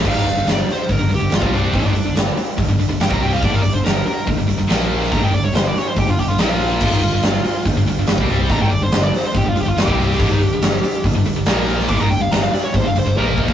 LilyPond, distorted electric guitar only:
\new Staff \with { instrumentName = "Distorted electric guitar" } { \clef bass \time 4/4 \key g \phrygian \tempo 4 = 142 <g, d>16 <aes, ees>16 <g, d>16 <g, d>16 <g, d>8 r8 <g, d>16 <g, d>16 <g, d>16 <g, d>16 <g, d>16 <c g c'>8. | <g, d>16 <aes, ees>16 <g, d>16 <g, d>16 <g, d>8 r8 <g, d>16 <g, d>16 <g, d>16 <g, d>16 <g, d>16 <c g c'>8. | <g, d>16 <aes, ees>16 <g, d>16 <g, d>16 <g, d>8 r8 <g, d>16 <g, d>16 <g, d>16 <g, d>16 <bes, f bes>4 | <g, d>16 <aes, ees>16 <g, d>16 <g, d>16 <g, d>8 r8 <g, d>16 <g, d>16 <g, d>16 <g, d>16 <bes, f bes>4 |
<g, d>16 <aes, ees>16 <g, d>16 <g, d>16 <g, d>8 r8 <g, d>16 <g, d>16 <g, d>16 <g, d>16 <g, d>16 <c g c'>8. | <g, d>16 <aes, ees>16 <g, d>16 <g, d>16 <g, d>8 r8 <g, d>16 <g, d>16 <g, d>16 <g, d>16 <g, d>16 <c g c'>8. | <g, d>16 <aes, ees>16 <g, d>16 <g, d>16 <g, d>8 r8 <g, d>16 <g, d>16 <g, d>16 <g, d>16 <bes, f bes>4 | <g, d>16 <aes, ees>16 <g, d>16 <g, d>16 <g, d>8 r8 <g, d>16 <g, d>16 <g, d>16 <g, d>16 <bes, f bes>4 | }